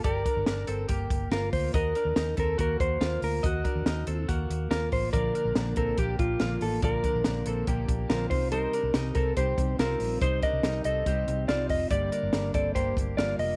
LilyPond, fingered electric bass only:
\new Staff \with { instrumentName = "Fingered electric bass" } { \clef bass \time 4/4 \key bes \major \tempo 4 = 142 g,,8 r16 g,,16 g,,8 g,,8 g,,8 g,,8 g,,8 d,8 | ees,8 r16 ees,16 ees,8 ees,8 ees,8 ees,8 ees,8 d,8 | ees,8 r16 ees,16 ees,8 ees,8 ees,8 ees,8 ees,8 a,,8 | bes,,8 r16 bes,,16 bes,,8 bes,,8 bes,,8 bes,,8 bes,,8 a,,8 |
bes,,8 r16 bes,,16 bes,,8 bes,,8 bes,,8 bes,,8 bes,,8 c,8~ | c,8 r16 c,16 c,8 c,8 c,8 c,8 c,8 bes,,8 | c,8 r16 c,16 c,8 c,8 c,8 c,8 c,8 f,,8 | g,,8 r16 g,,16 g,,8 g,,8 g,,8 g,,8 g,,8 f,,8 | }